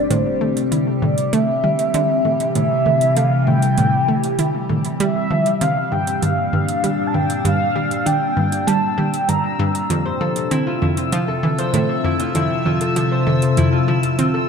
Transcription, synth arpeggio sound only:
0.10 0.33 A2 loud
0.41 0.64 A3 medium
0.72 0.94 E4 medium
1.02 1.31 A2 medium
1.33 1.46 A3 loud
1.64 1.86 G3 medium
1.94 2.17 D3 loud
2.25 2.48 A2 medium
2.56 2.78 A2 medium
2.86 3.09 A2 medium
3.17 3.46 A3 medium
3.48 3.77 A2 medium
3.78 4.01 A2 loud
4.08 4.31 A3 medium
4.39 4.62 E4 medium
4.69 4.99 A2 medium
5.00 5.14 G3 loud
5.31 5.53 F3 medium
5.61 5.84 C3 medium
5.92 6.15 G2 medium
6.22 6.45 G2 medium
6.53 6.76 G2 medium
6.84 7.13 G3 medium
7.14 7.44 G2 medium
7.45 7.68 G2 loud
7.76 7.98 G3 medium
8.06 8.29 D4 medium
8.37 8.66 G2 medium
8.67 8.81 G3 loud
8.98 9.12 G3 medium
9.29 9.51 G2 medium
9.59 9.82 G2 loud
9.90 10.13 F2 loud
10.21 10.43 F3 medium
10.51 10.74 C4 medium
10.82 11.11 F2 medium
11.12 11.26 F3 loud
11.43 11.66 E3 medium
11.74 11.96 A2 loud
12.04 12.27 F2 medium
12.35 12.58 F2 medium
12.65 12.88 F2 medium
12.96 13.25 F3 medium
13.27 13.56 F2 medium
13.58 13.80 F2 loud
13.88 14.11 F3 medium
14.19 14.41 C4 medium

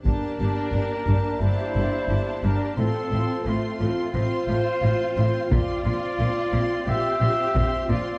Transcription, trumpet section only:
0.05 1.38 A#4 medium
1.42 2.44 C5 medium
2.44 2.78 A#4 medium
2.78 3.45 A4 medium
3.47 4.15 F4 medium
4.14 5.51 C5 medium
5.51 6.85 D5 medium
6.87 7.89 E5 medium
7.89 8.18 D5 medium

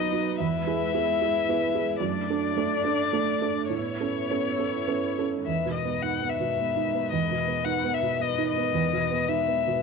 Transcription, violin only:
0.00 0.35 D#5 medium
0.40 1.99 E5 medium
2.02 3.68 D5 medium
3.71 5.21 C#5 soft
5.46 5.72 E5 soft
5.74 6.04 D#5 soft
6.02 6.31 F#5 soft
6.29 7.11 E5 soft
7.12 7.66 D#5 soft
7.65 7.95 F#5 soft
7.94 8.23 E5 soft
8.21 8.49 D#5 soft
8.49 9.30 D#5 soft
9.28 9.82 E5 medium

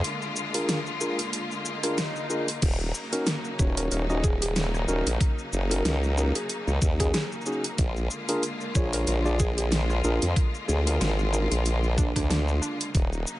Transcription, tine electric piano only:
0.54 0.78 D4 medium
0.54 0.78 F4 medium
0.54 0.78 G#4 medium
0.54 0.78 A#4 medium
1.01 1.18 D4 medium
1.01 1.18 F4 medium
1.01 1.18 G#4 medium
1.01 1.18 A#4 medium
1.84 1.97 D4 medium
1.84 1.97 F4 medium
1.84 1.97 G#4 medium
1.84 1.97 A#4 medium
2.30 2.47 D4 medium
2.30 2.47 F4 medium
2.30 2.47 G#4 medium
2.30 2.47 A#4 medium
3.13 3.26 C#4 loud
3.13 3.26 D#4 medium
3.13 3.26 F#4 medium
3.13 3.26 A#4 loud
3.59 4.05 C#4 medium
3.59 4.05 D#4 medium
3.59 4.05 F#4 medium
3.59 4.05 C#5 medium
4.10 4.23 C#4 loud
4.10 4.23 D#4 medium
4.10 4.23 F#4 medium
4.10 4.23 D#5 loud
4.88 5.06 C#4 loud
4.88 5.06 D#4 medium
4.88 5.06 F#4 medium
4.88 5.06 A#4 loud
5.71 5.95 C#4 medium
5.71 5.95 D#4 medium
5.71 5.95 F#4 medium
5.71 5.95 A#4 medium
6.17 6.35 C#4 medium
6.17 6.35 D#4 medium
6.17 6.35 F#4 medium
6.17 6.35 A#4 medium
7.00 7.14 C#4 medium
7.00 7.14 D#4 medium
7.00 7.14 F#4 medium
7.00 7.14 G#4 loud
7.46 7.64 C#4 medium
7.46 7.64 D#4 medium
7.46 7.64 F#4 medium
7.46 7.64 G#4 medium
8.29 8.42 D4 loud
8.29 8.42 F4 medium
8.29 8.42 G#4 medium
8.29 8.42 A#4 loud
8.75 9.21 D4 medium
8.75 9.21 F4 medium
8.75 9.21 G#4 medium
8.75 9.21 C#5 medium
9.25 9.39 D4 loud
9.25 9.39 F4 medium
9.25 9.39 G#4 medium
9.25 9.39 D5 loud
10.04 10.22 D4 loud
10.04 10.22 F4 medium
10.04 10.22 G#4 medium
10.04 10.22 A#4 loud
10.87 11.11 D4 medium
10.87 11.11 F4 medium
10.87 11.11 G#4 medium
10.87 11.11 A#4 medium
11.33 11.51 D4 medium
11.33 11.51 F4 medium
11.33 11.51 G#4 medium
11.33 11.51 A#4 medium

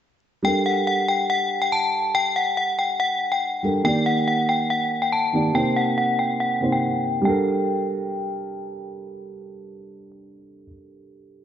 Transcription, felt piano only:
0.42 3.59 G3 medium
0.42 3.59 D4 medium
0.42 3.60 A4 medium
0.42 3.61 A#4 medium
3.63 3.85 G3 medium
3.63 3.85 D4 soft
3.63 3.85 A4 soft
3.63 3.86 A#4 medium
3.83 5.30 D#3 medium
3.83 5.31 A#3 medium
3.83 5.31 G4 medium
3.83 5.32 D5 medium
5.33 5.55 D#3 soft
5.33 5.53 A#3 soft
5.33 5.55 G4 soft
5.33 5.56 D5 medium
5.53 6.58 C3 medium
5.53 6.59 A#3 medium
5.53 6.60 D#4 medium
5.53 6.60 C5 medium
6.61 7.25 C3 medium
6.61 7.25 A#3 soft
6.61 7.26 D#4 soft
6.61 7.26 C5 medium
7.21 10.63 G3 medium
7.21 10.66 D4 medium
7.27 10.68 A4 medium
7.27 10.71 A#4 loud

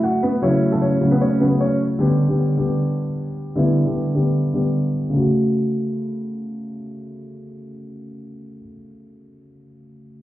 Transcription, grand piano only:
0.00 0.42 C#3 medium
0.00 0.42 F#3 medium
0.00 0.43 A3 medium
0.00 0.73 F#4 medium
0.42 0.60 C#3 loud
0.42 0.60 F#3 medium
0.42 0.60 A3 medium
0.42 0.61 E4 loud
0.71 0.89 C#3 medium
0.71 0.90 F#3 medium
0.71 0.90 A3 medium
0.71 0.90 F#4 medium
1.01 1.25 C#3 medium
1.01 1.25 F#3 medium
1.01 1.25 A3 medium
1.01 1.25 F#4 medium
1.40 1.76 C#3 medium
1.40 1.76 F#3 medium
1.40 1.76 A3 medium
1.40 1.77 F#4 medium
1.99 2.17 D3 loud
1.99 2.17 G3 medium
1.99 2.17 B3 medium
1.99 2.18 G4 loud
2.28 2.46 D3 medium
2.28 2.47 G3 medium
2.28 2.47 B3 medium
2.28 2.47 G4 medium
2.57 3.05 D3 medium
2.57 3.05 G3 medium
2.57 3.06 B3 medium
2.57 3.06 G4 medium
3.56 3.74 D3 medium
3.56 3.74 G3 medium
3.56 3.74 B3 medium
3.56 3.75 E4 loud
3.85 4.03 D3 medium
3.85 4.03 G3 medium
3.85 4.04 B3 medium
3.85 4.04 G4 medium
4.14 4.38 D3 medium
4.14 4.39 G3 medium
4.14 4.39 B3 medium
4.14 4.39 G4 medium
4.54 4.89 D3 medium
4.54 4.90 G3 medium
4.54 4.90 B3 medium
4.54 4.90 G4 medium
5.10 8.57 C#3 medium
5.10 8.60 A3 medium
5.17 8.64 F#4 medium

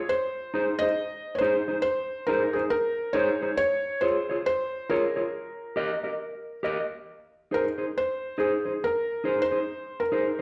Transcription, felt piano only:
0.00 0.11 C#5 loud
0.09 0.83 C5 loud
0.79 1.36 D#5 loud
1.35 1.80 C5 medium
1.35 1.41 C#5 medium
1.82 2.28 C5 medium
2.27 2.55 A#4 medium
2.53 2.71 G#4 medium
2.70 3.16 A#4 medium
3.13 3.56 C#5 medium
3.57 4.03 C#5 loud
4.01 4.45 C5 medium
4.46 4.91 C5 loud
4.89 6.59 A#4 medium
7.54 7.64 A#4 medium
7.98 8.36 C5 medium
8.40 8.83 G#4 medium
8.84 9.42 A#4 medium
9.42 10.00 C5 medium
10.00 10.42 A#4 medium

